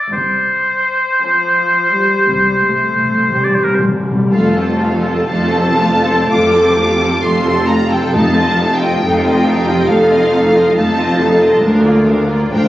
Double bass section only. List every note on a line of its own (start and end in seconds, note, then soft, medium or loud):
0.11 1.00 C2 soft
2.28 3.13 C2 soft
4.33 5.17 F1 medium
5.28 6.18 F1 medium
6.30 7.12 F1 medium
7.23 8.03 F1 medium
8.13 8.92 F1 medium
9.02 9.78 F1 medium
9.87 10.65 F1 medium
10.75 11.52 F1 medium
11.61 12.41 D2 medium
12.51 12.68 D2 medium